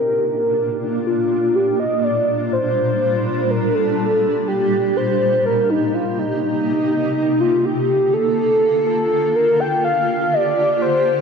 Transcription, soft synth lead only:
0.00 1.06 A#4 loud
1.07 1.57 F4 medium
1.55 1.79 G4 medium
1.80 2.05 D#5 medium
2.04 2.52 D5 medium
2.53 3.52 C5 loud
3.50 3.76 A#4 loud
3.75 4.49 A4 loud
4.48 4.98 G4 loud
4.97 5.45 C5 loud
5.45 5.71 A#4 loud
5.70 5.96 D#4 medium
5.94 6.20 F4 medium
6.19 7.42 D#4 loud
7.40 7.66 F4 loud
7.65 8.15 G4 loud
8.13 8.86 A4 loud
8.86 9.37 A4 loud
9.36 9.62 A#4 loud
9.60 9.84 G5 loud
9.84 10.35 F5 loud
10.33 10.81 D5 loud
10.82 11.21 C5 loud

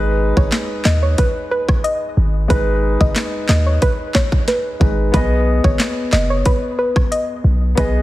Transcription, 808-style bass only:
0.00 0.33 G#1 loud
0.37 0.51 G#1 medium
0.85 1.15 D#2 medium
2.17 2.47 G#1 loud
2.50 2.97 G#1 loud
3.01 3.15 G#1 loud
3.49 3.79 D#2 medium
4.81 5.11 G#1 medium
5.14 5.60 B1 loud
5.64 5.78 G#1 medium
6.13 6.43 F#1 loud
7.44 7.74 B1 loud
7.78 8.02 B1 loud

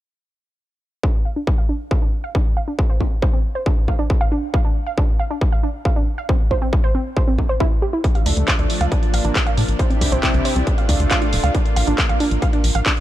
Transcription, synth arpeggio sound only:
1.03 1.09 D4 medium
1.25 1.33 F5 medium
1.36 1.42 D4 medium
1.58 1.66 F5 medium
1.69 1.74 D4 medium
1.91 1.99 F5 medium
2.02 2.07 D4 medium
2.24 2.32 F5 medium
2.35 2.40 D4 medium
2.57 2.65 F5 medium
2.68 2.73 D4 medium
2.90 2.98 C5 medium
3.01 3.06 C4 medium
3.22 3.30 C5 medium
3.33 3.39 C4 medium
3.55 3.63 C5 medium
3.66 3.71 D4 medium
3.88 3.96 F5 medium
3.99 4.04 D4 medium
4.21 4.29 F5 medium
4.32 4.37 D4 medium
4.54 4.62 F5 medium
4.65 4.70 D4 medium
4.86 4.95 F5 medium
4.98 5.03 D4 medium
5.19 5.27 F5 medium
5.31 5.36 D4 medium
5.52 5.60 F5 medium
5.63 5.69 D4 medium
5.85 5.93 F5 medium
5.96 6.01 D4 medium
6.18 6.26 F5 medium
6.29 6.34 C4 medium
6.51 6.59 C5 medium
6.62 6.67 C4 medium
6.84 6.92 C5 medium
6.95 7.00 C4 medium
7.17 7.24 C5 medium
7.28 7.33 C4 medium
7.49 7.55 C5 medium
7.60 7.66 E4 loud
7.82 7.85 G4 medium
7.93 7.99 E4 medium
8.15 8.23 F5 medium
8.26 8.31 D4 medium
8.48 8.56 F5 medium
8.59 8.64 D4 medium
8.81 8.89 F5 medium
8.92 8.97 D4 medium
9.14 9.22 F5 medium
9.25 9.30 D4 medium
9.47 9.54 F5 medium
9.57 9.63 D4 medium
9.79 9.87 C5 medium
9.90 9.96 C4 medium
10.12 10.20 C5 medium
10.23 10.28 C4 medium
10.45 10.53 C5 medium
10.56 10.61 C4 medium
10.78 10.86 F5 medium
10.89 10.94 D4 medium
11.11 11.19 F5 medium
11.22 11.27 D4 medium
11.44 11.52 F5 medium
11.55 11.60 D4 medium
11.76 11.84 F5 medium
11.87 11.93 D4 medium
12.09 12.17 F5 medium
12.20 12.26 D4 medium
12.42 12.50 F5 medium
12.53 12.58 D4 medium
12.75 12.83 F5 medium
12.86 12.91 D4 medium

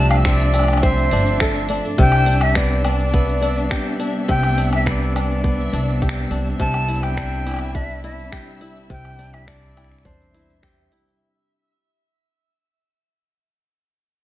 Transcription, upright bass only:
0.00 1.07 C2 medium
1.12 1.79 G1 medium
1.99 3.67 C2 medium
4.29 5.68 C2 medium
5.73 6.26 C2 medium
6.31 6.54 C2 medium
6.60 8.28 C2 medium
8.90 10.05 C2 medium
10.05 10.87 E2 loud

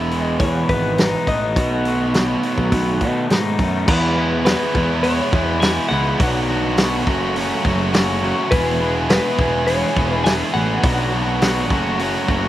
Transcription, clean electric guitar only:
0.00 0.21 E5 loud
0.21 0.36 D#5 loud
0.40 0.67 C#5 medium
0.69 1.29 B4 medium
1.28 3.27 D#5 medium
3.89 4.44 B4 medium
4.45 5.00 B4 medium
5.03 5.60 C#5 medium
5.60 5.88 G#5 loud
5.89 8.17 F#5 loud
8.51 9.09 B4 medium
9.10 9.64 B4 medium
9.67 10.13 C#5 medium
10.13 10.27 B4 medium
10.24 10.32 G#5 loud
10.54 12.48 F#5 loud

